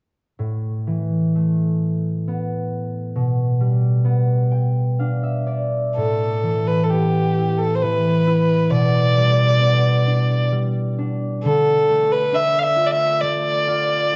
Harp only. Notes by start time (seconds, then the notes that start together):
0.39 A2
0.87 E3
1.35 A3
2.27 B3
3.16 B2
3.60 G3
4.04 B3
4.51 G5
4.99 D4 F5
5.23 E5
5.47 D5
5.97 A2
6.43 E3
6.93 B3
7.38 E4
7.83 E3
8.27 E4
8.70 B2
9.17 G3
9.61 B3
10.07 D4
10.52 G3
10.99 D4
11.45 D3
11.88 A3
12.32 D4
12.76 F4
13.22 A3
13.68 F4